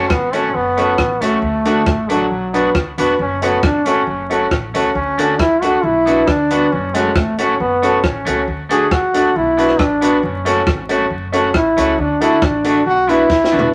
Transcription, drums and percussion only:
0.10 kick loud
0.10 cross-stick loud
0.33 closed hi-hat medium
0.77 closed hi-hat medium
0.98 kick loud
0.98 cross-stick loud
1.21 closed hi-hat loud
1.65 closed hi-hat loud
1.86 kick loud
1.86 cross-stick loud
2.10 closed hi-hat loud
2.54 closed hi-hat medium
2.75 kick loud
2.75 cross-stick loud
2.98 closed hi-hat loud
3.42 closed hi-hat loud
3.63 kick loud
3.63 cross-stick loud
3.86 closed hi-hat loud
4.31 closed hi-hat medium
4.51 kick loud
4.51 cross-stick loud
4.74 closed hi-hat loud
5.18 closed hi-hat loud
5.39 kick loud
5.39 cross-stick loud
5.62 closed hi-hat medium
6.07 closed hi-hat medium
6.27 kick loud
6.27 cross-stick loud
6.50 closed hi-hat loud
6.94 closed hi-hat loud
7.16 kick loud
7.16 cross-stick loud
7.38 closed hi-hat loud
7.83 closed hi-hat medium
8.04 kick loud
8.04 cross-stick loud
8.26 closed hi-hat loud
8.70 closed hi-hat medium
8.91 kick loud
8.91 cross-stick loud
9.14 closed hi-hat loud
9.58 closed hi-hat medium
9.69 cross-stick medium
9.79 kick loud
9.79 cross-stick loud
10.02 closed hi-hat loud
10.46 closed hi-hat loud
10.67 kick loud
10.67 cross-stick loud
10.89 closed hi-hat medium
11.33 closed hi-hat medium
11.54 kick loud
11.54 cross-stick loud
11.77 closed hi-hat loud
12.21 closed hi-hat loud
12.42 kick loud
12.42 cross-stick loud
12.64 closed hi-hat medium
13.09 closed hi-hat medium
13.30 kick loud
13.30 snare medium
13.44 snare medium
13.59 floor tom loud

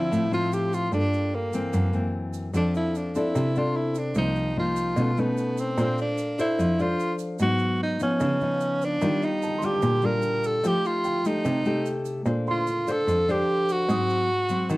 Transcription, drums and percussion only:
0.13 shaker medium
0.33 shaker soft
0.53 shaker soft
0.73 shaker medium
0.92 shaker medium
1.14 shaker soft
1.53 shaker medium
1.73 shaker medium
1.93 shaker soft
2.34 shaker medium
2.54 shaker medium
2.75 shaker soft
2.95 shaker soft
3.15 shaker medium
3.35 shaker medium
3.55 shaker soft
3.95 shaker medium
4.15 shaker medium
4.36 shaker soft
4.76 shaker medium
4.97 shaker medium
5.17 shaker soft
5.37 shaker soft
5.57 shaker medium
5.78 shaker medium
5.98 shaker soft
6.18 shaker soft
6.39 shaker medium
6.59 shaker medium
6.79 shaker soft
6.99 shaker soft
7.19 shaker medium
7.39 shaker medium
7.59 shaker soft
8.00 shaker medium
8.20 shaker medium
8.41 shaker soft
8.61 shaker soft
8.82 shaker medium
9.02 shaker medium
9.23 shaker soft
9.42 shaker medium
9.62 shaker medium
9.82 shaker medium
10.02 shaker soft
10.22 shaker soft
10.44 shaker medium
10.64 shaker medium
10.85 shaker soft
11.04 shaker medium
11.25 shaker medium
11.45 shaker medium
11.65 shaker soft
11.86 shaker soft
12.05 shaker medium
12.26 shaker medium
12.47 shaker soft
12.67 shaker soft
12.87 shaker medium
13.08 shaker medium
13.29 shaker soft
13.69 shaker medium
13.89 shaker medium
14.10 shaker soft
14.49 shaker medium
14.69 shaker medium

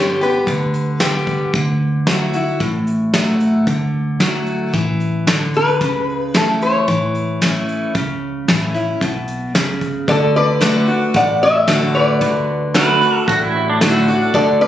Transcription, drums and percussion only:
0.21 closed hi-hat medium
0.47 kick medium
0.47 closed hi-hat medium
0.74 closed hi-hat medium
1.00 snare loud
1.00 closed hi-hat medium
1.27 kick medium
1.27 closed hi-hat medium
1.53 kick loud
1.53 closed hi-hat medium
2.07 snare loud
2.07 closed hi-hat medium
2.33 closed hi-hat medium
2.60 kick medium
2.60 closed hi-hat medium
2.87 closed hi-hat medium
3.13 snare loud
3.13 closed hi-hat medium
3.40 closed hi-hat medium
3.67 kick loud
3.67 closed hi-hat medium
4.20 snare loud
4.20 closed hi-hat medium
4.47 closed hi-hat medium
4.73 kick medium
4.73 closed hi-hat medium
5.00 closed hi-hat medium
5.27 snare loud
5.27 closed hi-hat medium
5.54 closed hi-hat medium
5.81 kick medium
5.81 closed hi-hat medium
6.35 snare loud
6.35 closed hi-hat medium
6.61 closed hi-hat medium
6.88 kick medium
6.88 closed hi-hat medium
7.15 closed hi-hat medium
7.42 snare loud
7.42 closed hi-hat medium
7.69 closed hi-hat medium
7.95 kick loud
7.95 closed hi-hat medium
8.48 snare loud
8.48 closed hi-hat medium
8.75 closed hi-hat medium
9.01 kick medium
9.01 closed hi-hat medium
9.28 closed hi-hat medium
9.55 snare loud
9.55 closed hi-hat medium
9.81 kick medium
9.81 closed hi-hat medium
10.08 kick loud
10.08 open hi-hat medium
10.61 snare loud
10.61 open hi-hat medium
11.15 kick loud
11.15 open hi-hat soft
11.68 snare loud
12.21 kick loud
12.21 open hi-hat medium
12.74 snare loud
12.74 open hi-hat medium
13.28 kick loud
13.28 open hi-hat medium
13.81 snare loud
13.81 open hi-hat medium
14.34 kick loud
14.34 open hi-hat medium

